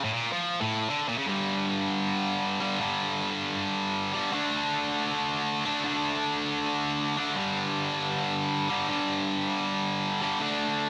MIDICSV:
0, 0, Header, 1, 2, 480
1, 0, Start_track
1, 0, Tempo, 380228
1, 1606, Time_signature, 4, 2, 24, 8
1, 13754, End_track
2, 0, Start_track
2, 0, Title_t, "Distorted electric guitar"
2, 0, Program_c, 0, 30
2, 53, Note_on_c, 0, 45, 108
2, 161, Note_off_c, 0, 45, 0
2, 167, Note_on_c, 0, 46, 100
2, 398, Note_off_c, 0, 46, 0
2, 411, Note_on_c, 0, 53, 102
2, 761, Note_off_c, 0, 53, 0
2, 770, Note_on_c, 0, 45, 107
2, 1121, Note_off_c, 0, 45, 0
2, 1130, Note_on_c, 0, 50, 117
2, 1360, Note_off_c, 0, 50, 0
2, 1365, Note_on_c, 0, 46, 101
2, 1478, Note_off_c, 0, 46, 0
2, 1488, Note_on_c, 0, 49, 99
2, 1594, Note_on_c, 0, 43, 99
2, 1600, Note_off_c, 0, 49, 0
2, 1614, Note_on_c, 0, 50, 100
2, 1626, Note_on_c, 0, 55, 100
2, 3268, Note_off_c, 0, 43, 0
2, 3270, Note_off_c, 0, 55, 0
2, 3278, Note_off_c, 0, 50, 0
2, 3285, Note_on_c, 0, 55, 82
2, 3298, Note_on_c, 0, 50, 79
2, 3317, Note_on_c, 0, 43, 71
2, 3510, Note_off_c, 0, 43, 0
2, 3513, Note_off_c, 0, 55, 0
2, 3519, Note_off_c, 0, 50, 0
2, 3526, Note_on_c, 0, 43, 102
2, 3545, Note_on_c, 0, 50, 97
2, 3556, Note_on_c, 0, 55, 107
2, 5195, Note_off_c, 0, 43, 0
2, 5205, Note_off_c, 0, 50, 0
2, 5206, Note_off_c, 0, 55, 0
2, 5221, Note_on_c, 0, 55, 90
2, 5240, Note_on_c, 0, 50, 73
2, 5250, Note_on_c, 0, 43, 61
2, 5436, Note_off_c, 0, 50, 0
2, 5442, Note_off_c, 0, 55, 0
2, 5451, Note_on_c, 0, 50, 90
2, 5457, Note_off_c, 0, 43, 0
2, 5471, Note_on_c, 0, 57, 117
2, 5486, Note_on_c, 0, 62, 110
2, 7120, Note_off_c, 0, 50, 0
2, 7126, Note_off_c, 0, 62, 0
2, 7130, Note_off_c, 0, 57, 0
2, 7131, Note_on_c, 0, 62, 94
2, 7149, Note_on_c, 0, 57, 83
2, 7164, Note_on_c, 0, 50, 70
2, 7358, Note_off_c, 0, 50, 0
2, 7367, Note_off_c, 0, 57, 0
2, 7373, Note_on_c, 0, 50, 103
2, 7390, Note_on_c, 0, 57, 104
2, 7398, Note_off_c, 0, 62, 0
2, 7403, Note_on_c, 0, 62, 118
2, 9041, Note_off_c, 0, 50, 0
2, 9046, Note_off_c, 0, 62, 0
2, 9049, Note_off_c, 0, 57, 0
2, 9051, Note_on_c, 0, 62, 73
2, 9071, Note_on_c, 0, 57, 74
2, 9083, Note_on_c, 0, 50, 76
2, 9281, Note_on_c, 0, 43, 100
2, 9285, Note_off_c, 0, 50, 0
2, 9289, Note_off_c, 0, 57, 0
2, 9300, Note_on_c, 0, 50, 97
2, 9314, Note_on_c, 0, 55, 112
2, 10952, Note_off_c, 0, 43, 0
2, 10958, Note_off_c, 0, 55, 0
2, 10962, Note_off_c, 0, 50, 0
2, 10973, Note_on_c, 0, 55, 94
2, 10993, Note_on_c, 0, 50, 80
2, 11012, Note_on_c, 0, 43, 64
2, 11197, Note_off_c, 0, 43, 0
2, 11199, Note_off_c, 0, 55, 0
2, 11209, Note_off_c, 0, 50, 0
2, 11212, Note_on_c, 0, 43, 96
2, 11229, Note_on_c, 0, 50, 116
2, 11244, Note_on_c, 0, 55, 121
2, 12874, Note_off_c, 0, 43, 0
2, 12875, Note_off_c, 0, 55, 0
2, 12882, Note_off_c, 0, 50, 0
2, 12890, Note_on_c, 0, 55, 83
2, 12909, Note_on_c, 0, 50, 83
2, 12920, Note_on_c, 0, 43, 75
2, 13107, Note_off_c, 0, 50, 0
2, 13114, Note_off_c, 0, 55, 0
2, 13122, Note_on_c, 0, 50, 105
2, 13129, Note_off_c, 0, 43, 0
2, 13140, Note_on_c, 0, 57, 117
2, 13146, Note_off_c, 0, 62, 0
2, 13151, Note_on_c, 0, 62, 118
2, 13754, Note_off_c, 0, 50, 0
2, 13754, Note_off_c, 0, 57, 0
2, 13754, Note_off_c, 0, 62, 0
2, 13754, End_track
0, 0, End_of_file